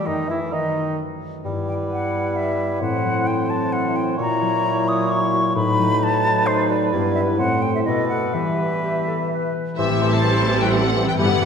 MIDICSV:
0, 0, Header, 1, 12, 480
1, 0, Start_track
1, 0, Key_signature, 1, "minor"
1, 0, Tempo, 458015
1, 64, Time_signature, 3, 2, 24, 8
1, 7743, Tempo, 478851
1, 10143, Tempo, 465116
1, 11865, End_track
2, 0, Start_track
2, 0, Title_t, "Violin section"
2, 0, Program_c, 0, 48
2, 10134, Note_on_c, 0, 76, 77
2, 10476, Note_off_c, 0, 76, 0
2, 10507, Note_on_c, 0, 81, 76
2, 10987, Note_off_c, 0, 81, 0
2, 10998, Note_on_c, 0, 79, 69
2, 11110, Note_on_c, 0, 78, 79
2, 11113, Note_off_c, 0, 79, 0
2, 11469, Note_off_c, 0, 78, 0
2, 11488, Note_on_c, 0, 79, 68
2, 11532, Note_off_c, 0, 79, 0
2, 11583, Note_on_c, 0, 78, 81
2, 11865, Note_off_c, 0, 78, 0
2, 11865, End_track
3, 0, Start_track
3, 0, Title_t, "Flute"
3, 0, Program_c, 1, 73
3, 64, Note_on_c, 1, 75, 59
3, 326, Note_on_c, 1, 76, 55
3, 342, Note_off_c, 1, 75, 0
3, 543, Note_off_c, 1, 76, 0
3, 549, Note_on_c, 1, 75, 51
3, 1022, Note_off_c, 1, 75, 0
3, 1763, Note_on_c, 1, 79, 58
3, 1826, Note_off_c, 1, 79, 0
3, 2008, Note_on_c, 1, 78, 63
3, 2478, Note_on_c, 1, 76, 61
3, 2494, Note_off_c, 1, 78, 0
3, 2945, Note_off_c, 1, 76, 0
3, 2951, Note_on_c, 1, 78, 67
3, 3427, Note_on_c, 1, 79, 78
3, 3442, Note_off_c, 1, 78, 0
3, 3667, Note_on_c, 1, 81, 71
3, 3683, Note_off_c, 1, 79, 0
3, 3904, Note_on_c, 1, 78, 78
3, 3920, Note_off_c, 1, 81, 0
3, 4153, Note_on_c, 1, 79, 72
3, 4168, Note_off_c, 1, 78, 0
3, 4388, Note_off_c, 1, 79, 0
3, 4404, Note_on_c, 1, 82, 83
3, 5117, Note_on_c, 1, 87, 78
3, 5133, Note_off_c, 1, 82, 0
3, 5356, Note_on_c, 1, 85, 76
3, 5372, Note_off_c, 1, 87, 0
3, 5832, Note_off_c, 1, 85, 0
3, 5837, Note_on_c, 1, 83, 85
3, 6323, Note_on_c, 1, 81, 94
3, 6338, Note_off_c, 1, 83, 0
3, 6777, Note_on_c, 1, 72, 90
3, 6792, Note_off_c, 1, 81, 0
3, 7021, Note_on_c, 1, 74, 74
3, 7037, Note_off_c, 1, 72, 0
3, 7486, Note_off_c, 1, 74, 0
3, 7492, Note_on_c, 1, 76, 78
3, 7555, Note_off_c, 1, 76, 0
3, 7725, Note_on_c, 1, 78, 79
3, 7974, Note_on_c, 1, 79, 69
3, 7990, Note_off_c, 1, 78, 0
3, 8097, Note_off_c, 1, 79, 0
3, 8109, Note_on_c, 1, 76, 61
3, 8160, Note_off_c, 1, 76, 0
3, 8204, Note_on_c, 1, 75, 72
3, 8437, Note_off_c, 1, 75, 0
3, 8443, Note_on_c, 1, 78, 66
3, 8695, Note_on_c, 1, 76, 61
3, 8710, Note_off_c, 1, 78, 0
3, 9904, Note_off_c, 1, 76, 0
3, 10153, Note_on_c, 1, 67, 64
3, 10508, Note_on_c, 1, 72, 72
3, 10523, Note_off_c, 1, 67, 0
3, 10988, Note_off_c, 1, 72, 0
3, 11000, Note_on_c, 1, 71, 59
3, 11106, Note_on_c, 1, 69, 67
3, 11122, Note_off_c, 1, 71, 0
3, 11463, Note_off_c, 1, 69, 0
3, 11469, Note_on_c, 1, 71, 57
3, 11523, Note_off_c, 1, 71, 0
3, 11593, Note_on_c, 1, 69, 66
3, 11865, Note_off_c, 1, 69, 0
3, 11865, End_track
4, 0, Start_track
4, 0, Title_t, "Cor anglais"
4, 0, Program_c, 2, 69
4, 66, Note_on_c, 2, 63, 51
4, 307, Note_off_c, 2, 63, 0
4, 314, Note_on_c, 2, 64, 49
4, 545, Note_on_c, 2, 63, 46
4, 561, Note_off_c, 2, 64, 0
4, 1030, Note_off_c, 2, 63, 0
4, 1518, Note_on_c, 2, 71, 43
4, 2914, Note_off_c, 2, 71, 0
4, 2947, Note_on_c, 2, 72, 53
4, 4376, Note_on_c, 2, 73, 59
4, 4392, Note_off_c, 2, 72, 0
4, 5812, Note_off_c, 2, 73, 0
4, 5819, Note_on_c, 2, 71, 67
4, 7704, Note_off_c, 2, 71, 0
4, 7746, Note_on_c, 2, 72, 58
4, 8220, Note_on_c, 2, 71, 58
4, 8235, Note_off_c, 2, 72, 0
4, 9907, Note_off_c, 2, 71, 0
4, 10141, Note_on_c, 2, 72, 57
4, 10250, Note_off_c, 2, 72, 0
4, 10375, Note_on_c, 2, 72, 48
4, 10486, Note_off_c, 2, 72, 0
4, 10624, Note_on_c, 2, 72, 54
4, 10733, Note_off_c, 2, 72, 0
4, 10851, Note_on_c, 2, 72, 46
4, 10963, Note_off_c, 2, 72, 0
4, 11083, Note_on_c, 2, 72, 52
4, 11197, Note_off_c, 2, 72, 0
4, 11334, Note_on_c, 2, 72, 48
4, 11445, Note_off_c, 2, 72, 0
4, 11575, Note_on_c, 2, 71, 51
4, 11685, Note_off_c, 2, 71, 0
4, 11821, Note_on_c, 2, 71, 48
4, 11865, Note_off_c, 2, 71, 0
4, 11865, End_track
5, 0, Start_track
5, 0, Title_t, "Clarinet"
5, 0, Program_c, 3, 71
5, 62, Note_on_c, 3, 63, 52
5, 300, Note_off_c, 3, 63, 0
5, 308, Note_on_c, 3, 64, 48
5, 416, Note_off_c, 3, 64, 0
5, 553, Note_on_c, 3, 63, 42
5, 1024, Note_off_c, 3, 63, 0
5, 1517, Note_on_c, 3, 64, 45
5, 4344, Note_off_c, 3, 64, 0
5, 4382, Note_on_c, 3, 64, 57
5, 5795, Note_off_c, 3, 64, 0
5, 5823, Note_on_c, 3, 63, 67
5, 7253, Note_on_c, 3, 64, 57
5, 7269, Note_off_c, 3, 63, 0
5, 7929, Note_off_c, 3, 64, 0
5, 8221, Note_on_c, 3, 69, 47
5, 8704, Note_on_c, 3, 67, 43
5, 8719, Note_off_c, 3, 69, 0
5, 9139, Note_off_c, 3, 67, 0
5, 9185, Note_on_c, 3, 67, 48
5, 9409, Note_off_c, 3, 67, 0
5, 9431, Note_on_c, 3, 69, 47
5, 9538, Note_off_c, 3, 69, 0
5, 9674, Note_on_c, 3, 71, 51
5, 10139, Note_off_c, 3, 71, 0
5, 10147, Note_on_c, 3, 67, 55
5, 10255, Note_off_c, 3, 67, 0
5, 10390, Note_on_c, 3, 67, 51
5, 10498, Note_off_c, 3, 67, 0
5, 10632, Note_on_c, 3, 67, 48
5, 10739, Note_off_c, 3, 67, 0
5, 10856, Note_on_c, 3, 67, 50
5, 10967, Note_off_c, 3, 67, 0
5, 11100, Note_on_c, 3, 67, 51
5, 11210, Note_off_c, 3, 67, 0
5, 11341, Note_on_c, 3, 67, 47
5, 11450, Note_off_c, 3, 67, 0
5, 11579, Note_on_c, 3, 67, 52
5, 11688, Note_off_c, 3, 67, 0
5, 11818, Note_on_c, 3, 67, 51
5, 11865, Note_off_c, 3, 67, 0
5, 11865, End_track
6, 0, Start_track
6, 0, Title_t, "Violin section"
6, 0, Program_c, 4, 48
6, 10132, Note_on_c, 4, 64, 62
6, 10139, Note_on_c, 4, 69, 55
6, 11540, Note_off_c, 4, 64, 0
6, 11543, Note_off_c, 4, 69, 0
6, 11571, Note_on_c, 4, 64, 56
6, 11574, Note_on_c, 4, 71, 54
6, 11865, Note_off_c, 4, 64, 0
6, 11865, Note_off_c, 4, 71, 0
6, 11865, End_track
7, 0, Start_track
7, 0, Title_t, "Harp"
7, 0, Program_c, 5, 46
7, 0, Note_on_c, 5, 59, 29
7, 0, Note_on_c, 5, 71, 33
7, 0, Note_on_c, 5, 83, 35
7, 67, Note_on_c, 5, 42, 41
7, 308, Note_on_c, 5, 57, 33
7, 537, Note_off_c, 5, 71, 0
7, 549, Note_on_c, 5, 71, 37
7, 787, Note_on_c, 5, 69, 35
7, 1019, Note_off_c, 5, 71, 0
7, 1032, Note_on_c, 5, 71, 37
7, 1253, Note_off_c, 5, 69, 0
7, 1266, Note_on_c, 5, 69, 35
7, 1510, Note_on_c, 5, 43, 43
7, 1531, Note_off_c, 5, 69, 0
7, 1536, Note_off_c, 5, 57, 0
7, 1537, Note_off_c, 5, 42, 0
7, 1751, Note_on_c, 5, 55, 36
7, 1978, Note_off_c, 5, 71, 0
7, 1990, Note_on_c, 5, 71, 38
7, 2233, Note_on_c, 5, 67, 38
7, 2468, Note_on_c, 5, 76, 43
7, 2698, Note_off_c, 5, 67, 0
7, 2710, Note_on_c, 5, 67, 39
7, 2933, Note_off_c, 5, 59, 0
7, 2939, Note_on_c, 5, 45, 50
7, 2970, Note_off_c, 5, 43, 0
7, 2970, Note_off_c, 5, 55, 0
7, 2970, Note_off_c, 5, 67, 0
7, 2970, Note_off_c, 5, 71, 0
7, 2974, Note_off_c, 5, 83, 0
7, 3174, Note_on_c, 5, 54, 43
7, 3424, Note_on_c, 5, 72, 46
7, 3662, Note_on_c, 5, 66, 45
7, 3893, Note_off_c, 5, 76, 0
7, 3906, Note_on_c, 5, 76, 50
7, 4123, Note_off_c, 5, 66, 0
7, 4135, Note_on_c, 5, 66, 47
7, 4387, Note_on_c, 5, 46, 55
7, 4397, Note_off_c, 5, 45, 0
7, 4401, Note_off_c, 5, 72, 0
7, 4614, Note_off_c, 5, 54, 0
7, 4627, Note_on_c, 5, 54, 46
7, 4857, Note_on_c, 5, 73, 54
7, 5093, Note_off_c, 5, 66, 0
7, 5105, Note_on_c, 5, 66, 50
7, 5327, Note_off_c, 5, 76, 0
7, 5340, Note_on_c, 5, 76, 55
7, 5565, Note_off_c, 5, 66, 0
7, 5578, Note_on_c, 5, 66, 54
7, 5819, Note_on_c, 5, 45, 64
7, 5841, Note_off_c, 5, 73, 0
7, 5843, Note_off_c, 5, 76, 0
7, 5846, Note_off_c, 5, 46, 0
7, 6053, Note_off_c, 5, 54, 0
7, 6066, Note_on_c, 5, 54, 48
7, 6311, Note_on_c, 5, 71, 55
7, 6534, Note_off_c, 5, 66, 0
7, 6547, Note_on_c, 5, 66, 49
7, 6788, Note_on_c, 5, 75, 56
7, 7007, Note_off_c, 5, 66, 0
7, 7020, Note_on_c, 5, 66, 52
7, 7263, Note_on_c, 5, 43, 60
7, 7277, Note_off_c, 5, 45, 0
7, 7280, Note_off_c, 5, 66, 0
7, 7281, Note_off_c, 5, 54, 0
7, 7283, Note_off_c, 5, 75, 0
7, 7499, Note_off_c, 5, 71, 0
7, 7506, Note_on_c, 5, 64, 42
7, 7514, Note_on_c, 5, 71, 51
7, 7745, Note_on_c, 5, 45, 57
7, 7765, Note_off_c, 5, 43, 0
7, 7769, Note_off_c, 5, 71, 0
7, 7968, Note_off_c, 5, 64, 0
7, 7977, Note_on_c, 5, 64, 41
7, 7986, Note_on_c, 5, 72, 45
7, 8216, Note_on_c, 5, 47, 51
7, 8238, Note_off_c, 5, 45, 0
7, 8238, Note_off_c, 5, 64, 0
7, 8239, Note_off_c, 5, 72, 0
7, 8451, Note_on_c, 5, 59, 37
7, 8456, Note_on_c, 5, 71, 39
7, 8692, Note_on_c, 5, 52, 45
7, 8719, Note_off_c, 5, 47, 0
7, 8922, Note_off_c, 5, 59, 0
7, 8934, Note_on_c, 5, 59, 35
7, 9184, Note_on_c, 5, 67, 40
7, 9404, Note_off_c, 5, 71, 0
7, 9416, Note_on_c, 5, 71, 36
7, 9658, Note_on_c, 5, 83, 41
7, 9892, Note_off_c, 5, 71, 0
7, 9904, Note_on_c, 5, 71, 34
7, 10137, Note_on_c, 5, 45, 56
7, 10158, Note_off_c, 5, 59, 0
7, 10159, Note_off_c, 5, 52, 0
7, 10160, Note_off_c, 5, 83, 0
7, 10162, Note_off_c, 5, 71, 0
7, 10257, Note_on_c, 5, 52, 42
7, 10382, Note_on_c, 5, 60, 44
7, 10503, Note_on_c, 5, 69, 48
7, 10611, Note_off_c, 5, 67, 0
7, 10742, Note_on_c, 5, 72, 50
7, 10859, Note_on_c, 5, 81, 49
7, 10970, Note_off_c, 5, 72, 0
7, 10982, Note_on_c, 5, 72, 52
7, 11101, Note_on_c, 5, 67, 50
7, 11208, Note_off_c, 5, 60, 0
7, 11221, Note_on_c, 5, 60, 47
7, 11342, Note_on_c, 5, 55, 44
7, 11445, Note_off_c, 5, 52, 0
7, 11457, Note_on_c, 5, 52, 43
7, 11577, Note_on_c, 5, 43, 58
7, 11601, Note_off_c, 5, 52, 0
7, 11602, Note_off_c, 5, 45, 0
7, 11602, Note_off_c, 5, 81, 0
7, 11603, Note_off_c, 5, 60, 0
7, 11604, Note_off_c, 5, 72, 0
7, 11605, Note_off_c, 5, 69, 0
7, 11692, Note_on_c, 5, 52, 43
7, 11808, Note_on_c, 5, 59, 48
7, 11865, Note_off_c, 5, 43, 0
7, 11865, Note_off_c, 5, 52, 0
7, 11865, Note_off_c, 5, 55, 0
7, 11865, Note_off_c, 5, 59, 0
7, 11865, Note_off_c, 5, 67, 0
7, 11865, End_track
8, 0, Start_track
8, 0, Title_t, "French horn section"
8, 0, Program_c, 6, 60
8, 68, Note_on_c, 6, 51, 51
8, 309, Note_off_c, 6, 51, 0
8, 320, Note_on_c, 6, 52, 49
8, 426, Note_off_c, 6, 52, 0
8, 553, Note_on_c, 6, 51, 46
8, 1024, Note_off_c, 6, 51, 0
8, 1517, Note_on_c, 6, 55, 45
8, 1518, Note_on_c, 6, 59, 46
8, 2913, Note_off_c, 6, 55, 0
8, 2914, Note_off_c, 6, 59, 0
8, 2943, Note_on_c, 6, 52, 48
8, 2950, Note_on_c, 6, 60, 53
8, 4379, Note_off_c, 6, 52, 0
8, 4382, Note_on_c, 6, 64, 59
8, 4383, Note_off_c, 6, 60, 0
8, 4386, Note_on_c, 6, 54, 59
8, 5795, Note_off_c, 6, 64, 0
8, 5837, Note_on_c, 6, 63, 63
8, 7238, Note_off_c, 6, 63, 0
8, 7261, Note_off_c, 6, 54, 0
8, 7269, Note_on_c, 6, 55, 59
8, 7274, Note_on_c, 6, 59, 59
8, 7716, Note_off_c, 6, 55, 0
8, 7719, Note_off_c, 6, 59, 0
8, 7733, Note_on_c, 6, 57, 55
8, 7734, Note_on_c, 6, 60, 56
8, 8209, Note_off_c, 6, 57, 0
8, 8213, Note_on_c, 6, 59, 52
8, 8214, Note_off_c, 6, 60, 0
8, 8221, Note_on_c, 6, 57, 49
8, 8556, Note_off_c, 6, 59, 0
8, 8557, Note_off_c, 6, 57, 0
8, 8699, Note_on_c, 6, 59, 49
8, 8703, Note_on_c, 6, 55, 48
8, 9881, Note_off_c, 6, 59, 0
8, 9908, Note_off_c, 6, 55, 0
8, 10151, Note_on_c, 6, 55, 57
8, 10160, Note_on_c, 6, 60, 60
8, 10317, Note_off_c, 6, 55, 0
8, 10323, Note_off_c, 6, 60, 0
8, 11586, Note_on_c, 6, 55, 56
8, 11592, Note_on_c, 6, 59, 59
8, 11752, Note_off_c, 6, 55, 0
8, 11756, Note_off_c, 6, 59, 0
8, 11865, End_track
9, 0, Start_track
9, 0, Title_t, "Viola section"
9, 0, Program_c, 7, 48
9, 10145, Note_on_c, 7, 55, 62
9, 10145, Note_on_c, 7, 60, 64
9, 11546, Note_off_c, 7, 60, 0
9, 11547, Note_off_c, 7, 55, 0
9, 11593, Note_on_c, 7, 55, 60
9, 11593, Note_on_c, 7, 59, 60
9, 11865, Note_off_c, 7, 55, 0
9, 11865, Note_off_c, 7, 59, 0
9, 11865, End_track
10, 0, Start_track
10, 0, Title_t, "Bassoon"
10, 0, Program_c, 8, 70
10, 68, Note_on_c, 8, 51, 52
10, 305, Note_on_c, 8, 52, 48
10, 320, Note_off_c, 8, 51, 0
10, 558, Note_on_c, 8, 51, 46
10, 573, Note_off_c, 8, 52, 0
10, 1036, Note_off_c, 8, 51, 0
10, 1523, Note_on_c, 8, 55, 51
10, 2949, Note_on_c, 8, 45, 54
10, 2965, Note_off_c, 8, 55, 0
10, 4379, Note_off_c, 8, 45, 0
10, 4385, Note_on_c, 8, 46, 63
10, 5797, Note_off_c, 8, 46, 0
10, 5822, Note_on_c, 8, 45, 67
10, 7231, Note_off_c, 8, 45, 0
10, 7265, Note_on_c, 8, 43, 61
10, 7746, Note_on_c, 8, 45, 58
10, 7761, Note_off_c, 8, 43, 0
10, 8227, Note_on_c, 8, 47, 57
10, 8242, Note_off_c, 8, 45, 0
10, 8699, Note_off_c, 8, 47, 0
10, 8705, Note_on_c, 8, 52, 55
10, 9884, Note_off_c, 8, 52, 0
10, 10149, Note_on_c, 8, 52, 54
10, 10257, Note_off_c, 8, 52, 0
10, 10387, Note_on_c, 8, 52, 50
10, 10495, Note_off_c, 8, 52, 0
10, 10618, Note_on_c, 8, 52, 50
10, 10728, Note_off_c, 8, 52, 0
10, 10865, Note_on_c, 8, 52, 50
10, 10974, Note_off_c, 8, 52, 0
10, 11114, Note_on_c, 8, 52, 53
10, 11221, Note_off_c, 8, 52, 0
10, 11352, Note_on_c, 8, 52, 50
10, 11459, Note_off_c, 8, 52, 0
10, 11598, Note_on_c, 8, 52, 57
10, 11702, Note_off_c, 8, 52, 0
10, 11829, Note_on_c, 8, 52, 52
10, 11865, Note_off_c, 8, 52, 0
10, 11865, End_track
11, 0, Start_track
11, 0, Title_t, "Cello section"
11, 0, Program_c, 10, 48
11, 10143, Note_on_c, 10, 45, 53
11, 11545, Note_off_c, 10, 45, 0
11, 11589, Note_on_c, 10, 43, 57
11, 11865, Note_off_c, 10, 43, 0
11, 11865, End_track
12, 0, Start_track
12, 0, Title_t, "Double bass section"
12, 0, Program_c, 11, 48
12, 10151, Note_on_c, 11, 33, 62
12, 11549, Note_off_c, 11, 33, 0
12, 11584, Note_on_c, 11, 31, 63
12, 11865, Note_off_c, 11, 31, 0
12, 11865, End_track
0, 0, End_of_file